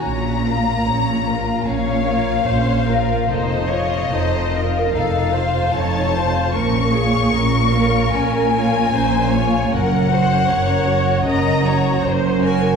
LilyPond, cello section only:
\new Staff \with { instrumentName = "Cello section" } { \clef bass \time 4/4 \key bes \minor \tempo 4 = 75 bes,4 bes,4 bes,4 bes,4 | f,4 f,4 f,4 f,4 | bes,4 bes,4 bes,4 bes,4 | ges,4 ges,4 ges,4 ges,4 | }